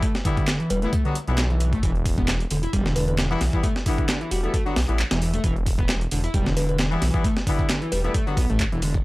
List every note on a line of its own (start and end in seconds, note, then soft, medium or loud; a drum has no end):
0.03 0.12 A3 medium
0.03 kick loud
0.03 closed hi-hat soft
0.03 closed hi-hat medium
0.15 snare medium
0.15 closed hi-hat soft
0.25 0.59 D3 medium
0.25 0.45 E3 medium
0.25 0.45 G3 medium
0.25 0.45 B3 medium
0.25 0.45 E4 medium
0.25 kick loud
0.25 closed hi-hat medium
0.37 kick loud
0.37 closed hi-hat soft
0.47 snare loud
0.47 clap loud
0.47 closed hi-hat soft
0.47 closed hi-hat medium
0.60 0.69 E3 medium
0.60 closed hi-hat soft
0.70 0.86 E1 medium
0.70 0.79 G3 medium
0.70 0.78 B4 medium
0.70 closed hi-hat medium
0.82 0.94 E3 medium
0.82 0.94 G3 medium
0.82 0.90 A3 medium
0.82 0.94 B3 medium
0.82 0.94 E4 medium
0.82 0.89 B4 medium
0.82 closed hi-hat soft
0.93 1.02 A3 medium
0.93 kick loud
0.93 closed hi-hat soft
0.93 closed hi-hat medium
1.05 1.13 D3 loud
1.05 1.17 F#3 medium
1.05 1.17 G3 medium
1.05 1.17 B3 medium
1.05 1.17 F#4 medium
1.05 closed hi-hat soft
1.15 closed hi-hat medium
1.28 1.78 B1 medium
1.28 1.39 E3 medium
1.28 1.39 G3 medium
1.28 1.39 B3 medium
1.28 1.39 E4 medium
1.28 closed hi-hat soft
1.38 snare loud
1.38 clap loud
1.38 closed hi-hat medium
1.38 closed hi-hat soft
1.50 1.71 E3 medium
1.50 closed hi-hat soft
1.60 closed hi-hat medium
1.73 1.80 A3 medium
1.73 kick medium
1.73 closed hi-hat soft
1.83 2.45 E1 loud
1.83 1.92 E3 medium
1.83 kick loud
1.83 closed hi-hat medium
1.83 closed hi-hat soft
1.95 closed hi-hat soft
2.06 kick loud
2.06 closed hi-hat medium
2.06 open hi-hat medium
2.18 2.26 B3 medium
2.18 kick loud
2.18 closed hi-hat soft
2.28 snare loud
2.28 clap loud
2.28 closed hi-hat soft
2.28 closed hi-hat medium
2.40 closed hi-hat soft
2.51 2.67 E1 medium
2.51 2.56 D3 loud
2.51 closed hi-hat medium
2.51 open hi-hat medium
2.63 2.70 E4 loud
2.63 closed hi-hat soft
2.73 3.36 E1 medium
2.73 2.84 G3 loud
2.73 kick loud
2.73 closed hi-hat soft
2.73 closed hi-hat medium
2.85 2.93 D3 medium
2.85 snare medium
2.85 closed hi-hat soft
2.96 3.29 D3 medium
2.96 3.04 B4 medium
2.96 closed hi-hat medium
2.96 open hi-hat medium
3.08 3.15 B4 medium
3.08 closed hi-hat soft
3.18 snare loud
3.18 clap loud
3.18 closed hi-hat soft
3.18 closed hi-hat medium
3.31 3.42 E3 loud
3.31 3.63 E3 medium
3.31 3.42 G3 loud
3.31 3.42 B3 medium
3.31 3.42 E4 loud
3.31 closed hi-hat soft
3.41 3.49 B1 loud
3.41 snare soft
3.41 closed hi-hat medium
3.41 open hi-hat medium
3.53 3.65 E3 medium
3.53 3.65 G3 medium
3.53 3.65 B3 medium
3.53 3.65 E4 medium
3.53 kick loud
3.53 closed hi-hat soft
3.63 3.72 A3 medium
3.63 kick loud
3.63 closed hi-hat soft
3.63 closed hi-hat medium
3.76 snare soft
3.76 closed hi-hat soft
3.86 4.20 D3 medium
3.86 4.06 E3 medium
3.86 4.06 G3 medium
3.86 4.06 B3 medium
3.86 4.06 E4 medium
3.86 kick loud
3.86 closed hi-hat medium
3.86 open hi-hat medium
3.98 kick medium
3.98 closed hi-hat soft
4.09 snare loud
4.09 clap loud
4.09 closed hi-hat medium
4.09 closed hi-hat soft
4.21 4.30 E3 medium
4.21 closed hi-hat soft
4.31 4.47 E1 medium
4.31 4.40 G3 medium
4.31 4.66 F#4 medium
4.31 closed hi-hat medium
4.31 open hi-hat medium
4.43 4.55 E3 medium
4.43 4.55 G3 medium
4.43 4.51 A3 medium
4.43 4.55 B3 medium
4.43 4.55 E4 medium
4.43 closed hi-hat soft
4.53 4.63 A3 medium
4.53 kick loud
4.53 closed hi-hat medium
4.53 closed hi-hat soft
4.66 4.73 D3 loud
4.66 4.78 F#3 medium
4.66 4.78 G3 medium
4.66 4.78 B3 medium
4.66 4.78 F#4 medium
4.66 closed hi-hat soft
4.76 4.85 B1 medium
4.76 snare loud
4.76 closed hi-hat medium
4.76 open hi-hat medium
4.89 5.03 A1 loud
4.89 5.00 E3 medium
4.89 5.00 G3 medium
4.89 5.00 B3 medium
4.89 5.00 E4 medium
4.89 closed hi-hat soft
4.99 clap loud
4.99 closed hi-hat medium
4.99 closed hi-hat soft
5.11 5.39 E1 loud
5.11 5.32 E3 medium
5.11 snare loud
5.11 closed hi-hat medium
5.11 closed hi-hat soft
5.22 open hi-hat medium
5.33 5.41 A3 medium
5.33 closed hi-hat medium
5.33 closed hi-hat soft
5.44 6.06 E1 medium
5.44 5.53 E3 medium
5.44 kick loud
5.44 closed hi-hat medium
5.44 closed hi-hat soft
5.56 closed hi-hat soft
5.66 kick loud
5.66 closed hi-hat medium
5.66 open hi-hat medium
5.79 5.86 B3 medium
5.79 kick loud
5.79 closed hi-hat soft
5.89 snare loud
5.89 clap loud
5.89 closed hi-hat medium
5.89 closed hi-hat soft
6.01 closed hi-hat soft
6.11 6.28 E1 medium
6.11 6.17 D3 loud
6.11 closed hi-hat medium
6.11 open hi-hat medium
6.24 6.31 E4 loud
6.24 closed hi-hat soft
6.34 6.96 E1 medium
6.34 6.45 G3 loud
6.34 kick loud
6.34 closed hi-hat medium
6.34 closed hi-hat soft
6.46 6.54 D3 medium
6.46 snare medium
6.46 closed hi-hat soft
6.57 6.90 D3 medium
6.57 6.64 B4 medium
6.57 closed hi-hat medium
6.57 open hi-hat medium
6.69 6.75 B4 medium
6.69 closed hi-hat soft
6.79 snare loud
6.79 clap loud
6.79 closed hi-hat medium
6.79 closed hi-hat soft
6.91 7.23 E3 medium
6.91 7.03 E3 loud
6.91 7.03 G3 loud
6.91 7.03 B3 medium
6.91 7.03 E4 loud
6.91 closed hi-hat soft
7.02 7.10 B1 loud
7.02 snare soft
7.02 closed hi-hat medium
7.02 open hi-hat medium
7.14 7.26 E3 medium
7.14 7.26 G3 medium
7.14 7.26 B3 medium
7.14 7.26 E4 medium
7.14 kick loud
7.14 closed hi-hat soft
7.24 7.33 A3 medium
7.24 kick loud
7.24 closed hi-hat soft
7.24 closed hi-hat medium
7.37 snare medium
7.37 closed hi-hat soft
7.47 7.81 D3 medium
7.47 7.67 E3 medium
7.47 7.67 G3 medium
7.47 7.67 B3 medium
7.47 7.67 E4 loud
7.47 kick loud
7.47 closed hi-hat medium
7.47 open hi-hat medium
7.59 kick loud
7.69 snare loud
7.69 clap loud
7.69 closed hi-hat medium
7.69 closed hi-hat soft
7.82 7.91 E3 medium
7.82 closed hi-hat soft
7.92 8.08 E1 medium
7.92 8.01 G3 medium
7.92 8.00 B4 medium
7.92 closed hi-hat medium
7.92 open hi-hat medium
8.04 8.16 E3 medium
8.04 8.16 G3 medium
8.04 8.12 A3 medium
8.04 8.16 B3 medium
8.04 8.16 E4 medium
8.04 8.11 B4 medium
8.04 closed hi-hat soft
8.14 8.24 A3 medium
8.14 kick loud
8.14 closed hi-hat medium
8.14 closed hi-hat soft
8.27 8.34 D3 loud
8.27 8.39 F#3 medium
8.27 8.39 G3 medium
8.27 8.39 B3 medium
8.27 8.39 F#4 medium
8.27 closed hi-hat soft
8.37 8.45 B1 medium
8.37 8.46 B3 medium
8.37 kick loud
8.37 closed hi-hat medium
8.37 open hi-hat medium
8.49 8.64 A1 loud
8.49 8.59 A3 loud
8.49 closed hi-hat soft
8.60 kick loud
8.60 clap loud
8.60 closed hi-hat medium
8.60 closed hi-hat soft
8.72 9.00 E1 loud
8.72 8.80 E3 medium
8.72 closed hi-hat soft
8.82 8.93 D3 medium
8.82 closed hi-hat medium
8.82 open hi-hat medium
8.94 kick loud